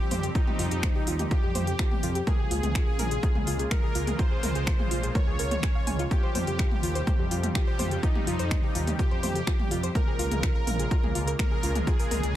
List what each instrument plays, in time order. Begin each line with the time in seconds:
Already playing: analog synth pad F3 G3 C4 G4, supersaw synth G4
0.11 detuned saw bass F2, synth arpeggio sound C5, mid tom, open hi-hat
0.23 synth arpeggio sound G4, closed hi-hat
0.35 supersaw synth D#4, synth arpeggio sound F4, kick, closed hi-hat
0.47 synth arpeggio sound G4, mid tom
0.59 detuned saw bass F2, synth arpeggio sound F4, open hi-hat
0.71 detuned saw bass F2, synth arpeggio sound G4, closed hi-hat
0.83 synth arpeggio sound C5, finger snap, kick, closed hi-hat, mid tom
0.95 synth arpeggio sound G4
1.07 detuned saw bass D#2, synth arpeggio sound F4, open hi-hat
1.19 synth arpeggio sound G4, closed hi-hat, mid tom
1.31 synth arpeggio sound F4, supersaw synth G4, kick, closed hi-hat
1.43 detuned saw bass F2, synth arpeggio sound G4
1.55 detuned saw bass F2, synth arpeggio sound C5, mid tom, open hi-hat
1.67 synth arpeggio sound G4, closed hi-hat
1.79 synth arpeggio sound F4, finger snap, kick, closed hi-hat
1.91 synth arpeggio sound G4, mid tom
2.03 detuned saw bass F2, synth arpeggio sound F4, open hi-hat
2.15 synth arpeggio sound G4, closed hi-hat
2.27 analog synth pad C#3 G#3 A#3 F4, supersaw synth G#4, synth arpeggio sound A#4, kick, closed hi-hat, mid tom
2.39 synth arpeggio sound G#4
2.51 detuned saw bass C#2, synth arpeggio sound F4, open hi-hat
2.63 detuned saw bass C#2, synth arpeggio sound G#4, closed hi-hat, mid tom
2.75 synth arpeggio sound F4, finger snap, kick, closed hi-hat
2.87 synth arpeggio sound G#4
2.99 detuned saw bass A#1, synth arpeggio sound A#4, mid tom, open hi-hat
3.11 synth arpeggio sound G#4, closed hi-hat
3.23 synth arpeggio sound F4, kick, closed hi-hat
3.35 detuned saw bass C#2, synth arpeggio sound G#4, mid tom
3.47 detuned saw bass C#2, synth arpeggio sound F4, open hi-hat
3.59 synth arpeggio sound G#4, closed hi-hat
3.71 synth arpeggio sound A#4, supersaw synth A#4, finger snap, kick, closed hi-hat, mid tom
3.83 synth arpeggio sound G#4
3.95 detuned saw bass C#2, synth arpeggio sound F4, open hi-hat
4.07 synth arpeggio sound G#4, closed hi-hat, mid tom
4.19 synth arpeggio sound F4, supersaw synth C5, kick, closed hi-hat
4.31 synth arpeggio sound G#4
4.43 detuned saw bass C#2, synth arpeggio sound A#4, mid tom, open hi-hat
4.55 detuned saw bass C#2, synth arpeggio sound G#4, closed hi-hat
4.67 synth arpeggio sound F4, finger snap, kick, closed hi-hat
4.79 synth arpeggio sound G#4, mid tom
4.91 detuned saw bass A#1, synth arpeggio sound F4, open hi-hat
5.03 synth arpeggio sound G#4, closed hi-hat
5.15 synth arpeggio sound A#4, supersaw synth C#5, kick, closed hi-hat, mid tom
5.27 detuned saw bass C#2, synth arpeggio sound G#4
5.39 detuned saw bass C#2, synth arpeggio sound A#4, open hi-hat
5.51 synth arpeggio sound C#5, closed hi-hat, mid tom
5.63 synth arpeggio sound G#5, finger snap, kick, closed hi-hat
5.75 synth arpeggio sound F5
5.87 detuned saw bass C#2, synth arpeggio sound G#5, mid tom, open hi-hat
5.99 synth arpeggio sound F4, closed hi-hat
6.11 analog synth pad C3 F3 G3, synth arpeggio sound F4, supersaw synth G4, kick, closed hi-hat
6.23 synth arpeggio sound C5
6.35 detuned saw bass F2, synth arpeggio sound C5, mid tom, open hi-hat
6.47 detuned saw bass F2, synth arpeggio sound G4, closed hi-hat
6.59 synth arpeggio sound F4, finger snap, kick, closed hi-hat
6.71 synth arpeggio sound G4, mid tom
6.83 detuned saw bass D#2, synth arpeggio sound F4, open hi-hat
6.95 synth arpeggio sound C5, closed hi-hat
7.07 synth arpeggio sound C5, kick, closed hi-hat, mid tom
7.19 detuned saw bass F2, synth arpeggio sound G4
7.31 detuned saw bass F2, synth arpeggio sound F4, open hi-hat
7.43 synth arpeggio sound G4, closed hi-hat, mid tom
7.55 synth arpeggio sound F4, supersaw synth G4, finger snap, kick, closed hi-hat
7.67 synth arpeggio sound C5
7.79 detuned saw bass F2, synth arpeggio sound C5, mid tom, open hi-hat
7.91 synth arpeggio sound G4, closed hi-hat
8.03 supersaw synth D#4, synth arpeggio sound F4, analog synth pad G4, kick, closed hi-hat
8.15 synth arpeggio sound G4, mid tom
8.27 detuned saw bass F2, synth arpeggio sound F4, open hi-hat
8.39 detuned saw bass F2, synth arpeggio sound C5, closed hi-hat
8.51 synth arpeggio sound C5, finger snap, kick, closed hi-hat, mid tom
8.63 synth arpeggio sound G4
8.75 detuned saw bass D#2, synth arpeggio sound F4, open hi-hat
8.87 synth arpeggio sound G4, closed hi-hat, mid tom
8.99 synth arpeggio sound F4, supersaw synth G4, kick, closed hi-hat
9.11 detuned saw bass F2, synth arpeggio sound C5
9.23 detuned saw bass F2, synth arpeggio sound C5, mid tom, open hi-hat
9.35 synth arpeggio sound G4, closed hi-hat
9.47 synth arpeggio sound F4, finger snap, kick, closed hi-hat
9.59 synth arpeggio sound G4, mid tom
9.71 detuned saw bass F2, synth arpeggio sound F4, open hi-hat
9.83 synth arpeggio sound C5, closed hi-hat
9.95 analog synth pad C#3 G#3 A#3 F4, supersaw synth A#4, synth arpeggio sound A#4, kick, closed hi-hat, mid tom
10.07 synth arpeggio sound G#4
10.19 detuned saw bass C#2, synth arpeggio sound F4, open hi-hat
10.31 detuned saw bass C#2, synth arpeggio sound G#4, closed hi-hat, mid tom
10.43 synth arpeggio sound F4, finger snap, kick, closed hi-hat
10.55 synth arpeggio sound A#4
10.67 detuned saw bass A#1, synth arpeggio sound A#4, mid tom, open hi-hat
10.79 synth arpeggio sound G#4, closed hi-hat
10.91 synth arpeggio sound F4, kick, closed hi-hat
11.03 detuned saw bass C#2, synth arpeggio sound G#4, mid tom
11.15 detuned saw bass C#2, synth arpeggio sound F4, open hi-hat
11.27 synth arpeggio sound A#4, closed hi-hat
11.39 supersaw synth A#4, synth arpeggio sound A#4, finger snap, kick, closed hi-hat, mid tom
11.51 synth arpeggio sound G#4
11.63 detuned saw bass C#2, synth arpeggio sound F4, open hi-hat
11.75 synth arpeggio sound G#4, closed hi-hat, mid tom
11.87 synth arpeggio sound F4, supersaw synth G#4, kick, closed hi-hat
11.99 synth arpeggio sound A#4, open hi-hat
12.11 detuned saw bass C#2, synth arpeggio sound A#4, mid tom, open hi-hat
12.23 detuned saw bass C#2, synth arpeggio sound G#4, closed hi-hat